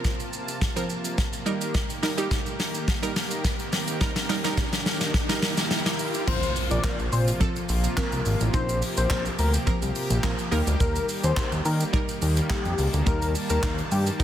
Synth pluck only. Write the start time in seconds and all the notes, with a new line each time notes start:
Already playing: F3 C4 A#4
0.76 F3 C4 A#4
1.46 G3 D#4 A#4
2.03 G3 D#4 A#4
2.17 G3 D#4 G4
3.03 G3 D#4 A#4
4.01 G3 D#4 A#4
4.29 G3 D#4 A#4
4.44 G3 D#4 A#4
5.29 G3 D#4 A#4
6.27 F3 A#3 C4 A#4
6.84 F3 A#3 C4 A#4
7.40 F3 A#3 C4 A4
7.97 F3 A#3 C4 A#4
8.53 F3 A#3 C4 D#4
9.10 F3 A#3 C4 A#4
9.67 F3 A#3 C4 A#4
10.23 F3 A#3 C4 A#4
10.51 G3 A#3 D#4 A#4
11.37 G3 A#3 D#4 A#4
11.93 G3 A#3 D#4 A#4
12.50 G3 A#3 D#4 A4
13.06 G3 A#3 D#4 A#4
13.63 G3 A#3 D#4 A#4
14.20 G3 A#3 D#4 A#4